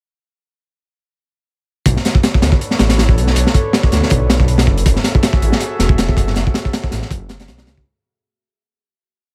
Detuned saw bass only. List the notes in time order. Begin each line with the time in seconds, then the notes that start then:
1.86 B1
2.42 D2
2.80 A1
3.17 B1
3.36 B1
3.92 D2
4.11 B1
4.67 F#1
4.86 F#1
5.42 A1
5.80 E1
6.17 F#1
6.36 F#1
6.92 A1
7.11 F#1
7.48 B1
7.67 C#2